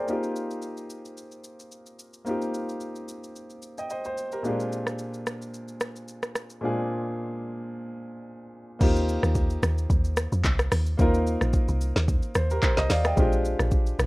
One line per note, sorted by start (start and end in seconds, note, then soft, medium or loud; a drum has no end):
0.00 0.22 G#4 medium
0.00 0.22 C5 medium
0.00 0.10 D5 medium
0.06 2.21 A#3 medium
0.06 2.22 C4 medium
0.06 2.22 D#4 medium
0.06 2.23 F4 medium
0.06 shaker medium
0.10 2.23 G4 medium
0.23 shaker medium
0.36 shaker medium
0.51 shaker medium
0.62 shaker medium
0.77 shaker medium
0.90 shaker medium
1.05 shaker medium
1.17 shaker medium
1.31 shaker soft
1.44 shaker medium
1.60 shaker medium
1.72 shaker medium
1.86 shaker medium
1.99 shaker medium
2.13 shaker medium
2.25 4.40 A#3 medium
2.25 4.40 C4 medium
2.25 4.41 D#4 medium
2.25 4.41 F4 medium
2.25 shaker medium
2.29 3.61 G4 medium
2.42 shaker medium
2.54 shaker medium
2.69 shaker medium
2.80 shaker medium
2.96 shaker medium
3.08 shaker medium
3.24 shaker medium
3.36 shaker medium
3.50 shaker soft
3.62 shaker medium
3.78 3.89 D#5 soft
3.78 3.90 G5 medium
3.78 shaker medium
3.90 4.04 C5 medium
3.90 4.04 D#5 medium
3.90 shaker medium
4.05 4.31 C5 medium
4.05 shaker medium
4.17 shaker medium
4.32 4.46 G4 medium
4.32 4.58 A#4 medium
4.32 shaker medium
4.43 6.58 A#2 medium
4.43 6.58 G#3 medium
4.43 6.59 C4 medium
4.43 6.59 D4 medium
4.43 6.60 F4 medium
4.43 shaker medium
4.47 6.60 G4 medium
4.60 shaker medium
4.72 shaker medium
4.87 cross-stick medium
4.87 shaker medium
4.99 shaker medium
5.14 shaker soft
5.27 cross-stick medium
5.27 shaker medium
5.42 shaker medium
5.54 shaker medium
5.68 shaker soft
5.80 cross-stick loud
5.80 shaker loud
5.96 shaker medium
6.08 shaker medium
6.23 cross-stick medium
6.23 shaker medium
6.35 cross-stick medium
6.35 shaker medium
6.50 shaker medium
6.61 8.76 A#2 medium
6.61 8.76 G#3 medium
6.61 8.77 C4 medium
6.61 8.77 D4 medium
6.61 8.78 F4 medium
6.65 8.78 G#4 medium
8.79 9.19 D#2 loud
8.79 10.94 A#3 medium
8.79 10.95 C4 medium
8.79 10.95 D#4 medium
8.79 10.96 F4 medium
8.79 kick loud
8.79 crash loud
8.79 shaker medium
8.83 10.96 G4 medium
8.96 shaker medium
9.09 shaker medium
9.23 9.59 D#2 loud
9.23 cross-stick medium
9.23 shaker medium
9.35 kick loud
9.35 shaker medium
9.50 shaker medium
9.63 9.87 D#2 loud
9.63 cross-stick loud
9.63 shaker loud
9.78 shaker medium
9.90 10.28 D#2 loud
9.90 kick loud
9.90 shaker medium
10.04 shaker medium
10.17 cross-stick loud
10.17 shaker loud
10.32 10.43 F2 loud
10.32 shaker medium
10.44 10.69 C2 loud
10.44 kick loud
10.44 clap loud
10.44 shaker medium
10.59 cross-stick loud
10.59 shaker medium
10.72 10.96 D#2 loud
10.72 cross-stick loud
10.72 open hi-hat medium
10.72 shaker loud
10.86 shaker medium
10.97 11.37 D#2 loud
10.97 13.12 A#3 medium
10.97 13.13 C4 medium
10.97 13.13 D#4 medium
10.97 13.14 F4 medium
10.97 kick loud
10.97 shaker medium
11.02 12.34 A#4 medium
11.14 shaker medium
11.27 shaker medium
11.41 11.66 A#1 loud
11.41 cross-stick medium
11.41 shaker medium
11.53 kick loud
11.53 shaker medium
11.68 11.93 C2 loud
11.68 shaker medium
11.81 shaker loud
11.96 12.20 D#2 medium
11.96 snare medium
11.96 shaker medium
12.08 kick loud
12.08 shaker medium
12.22 shaker medium
12.35 12.60 D#2 medium
12.35 12.50 C5 medium
12.35 cross-stick loud
12.35 shaker loud
12.50 12.63 G4 medium
12.50 12.62 A#4 medium
12.50 shaker medium
12.63 12.77 C5 medium
12.63 kick loud
12.63 clap medium
12.63 shaker medium
12.77 12.89 C2 medium
12.77 12.90 C5 medium
12.77 12.90 D#5 medium
12.77 snare medium
12.77 shaker medium
12.90 13.14 D#2 medium
12.90 13.05 D5 medium
12.90 13.04 F5 medium
12.90 snare medium
12.90 open hi-hat medium
12.90 shaker loud
13.04 13.31 D#5 medium
13.04 13.31 G5 medium
13.04 cross-stick loud
13.04 shaker medium
13.16 13.55 A#1 loud
13.16 14.06 G#3 medium
13.16 14.06 C4 medium
13.16 14.06 D4 medium
13.16 14.06 F4 medium
13.16 kick loud
13.16 shaker medium
13.20 14.06 G4 medium
13.32 shaker medium
13.45 shaker medium
13.59 13.95 A#1 loud
13.59 cross-stick medium
13.59 shaker medium
13.71 kick loud
13.71 shaker medium
13.86 shaker medium
13.99 14.06 A#1 loud
13.99 cross-stick loud
13.99 shaker medium